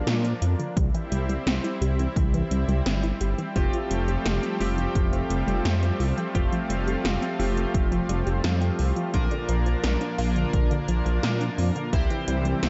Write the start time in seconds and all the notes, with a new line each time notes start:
Already playing: F3 A#3 D4
0.07 A#2 A#3, snare, closed hi-hat
0.24 D4, closed hi-hat
0.42 F2 F4, closed hi-hat
0.59 D3, closed hi-hat
0.77 C2 E3 G3 C4 E4, kick, closed hi-hat
0.94 E3, closed hi-hat
1.12 C2 G3, closed hi-hat
1.29 G3, closed hi-hat
1.47 C2 C4, snare, closed hi-hat
1.64 E4, closed hi-hat
1.81 C2 G4, closed hi-hat
1.99 E3, closed hi-hat
2.16 C2 E3, kick, closed hi-hat
2.34 E3, closed hi-hat
2.51 C2 G3, closed hi-hat
2.68 C2 G3, closed hi-hat
2.86 G1 C4, snare, closed hi-hat
3.03 E4, closed hi-hat
3.21 G1 G4, closed hi-hat
3.38 E3, closed hi-hat
3.56 F1 F3 A3 C4 F4 G4, kick, closed hi-hat
3.73 F3, closed hi-hat
3.90 F1 G3, closed hi-hat
4.08 G3, closed hi-hat
4.25 F1 A3, snare, closed hi-hat
4.43 C4, closed hi-hat
4.60 F1 A3 C4 F4 G4, open hi-hat
4.78 F3, closed hi-hat
4.95 F1 F3, kick, closed hi-hat
5.13 F3, closed hi-hat
5.30 F1 G3, closed hi-hat
5.48 F1 G3, closed hi-hat
5.65 F2 A3, snare, closed hi-hat
5.83 C4, closed hi-hat
6.00 C2 F4, open hi-hat
6.18 F3, closed hi-hat
6.35 F1 F3 A3 C4 F4 G4, kick, closed hi-hat
6.52 F3, closed hi-hat
6.70 F1 G3, closed hi-hat
6.87 G3, closed hi-hat
7.04 F1 A3, snare, closed hi-hat
7.22 C4, closed hi-hat
7.39 F1 A3 C4 F4 G4, open hi-hat
7.57 F3, closed hi-hat
7.74 F1 F3, kick, closed hi-hat
7.92 F3, closed hi-hat
8.09 F1 G3, closed hi-hat
8.27 F1 G3, closed hi-hat
8.44 F2 A3, snare, closed hi-hat
8.61 C4, closed hi-hat
8.79 C2 F4, open hi-hat
8.96 F3, closed hi-hat
9.14 A#1 A#2 D3 A#3 D4 F4 A#4, kick, closed hi-hat
9.31 D3, closed hi-hat
9.49 A#1 F3, closed hi-hat
9.66 F3, closed hi-hat
9.84 A#1 A#3, snare, closed hi-hat
10.01 D4, closed hi-hat
10.18 A#1 A#2 A#3 D4 F4 A#4, open hi-hat
10.36 D3, closed hi-hat
10.53 A#1 D3, kick, closed hi-hat
10.71 D3, closed hi-hat
10.88 A#1 F3, closed hi-hat
11.06 A#1 F3, closed hi-hat
11.23 A#2 A#3, snare, closed hi-hat
11.41 D4, closed hi-hat
11.58 F2 F4, open hi-hat
11.76 D3, closed hi-hat
11.93 C2 C3 E3 G3 C4 E4 G4 C5, kick, closed hi-hat
12.10 E3, closed hi-hat
12.28 C2 G3, closed hi-hat
12.45 G3, closed hi-hat
12.63 C2 C4, snare, closed hi-hat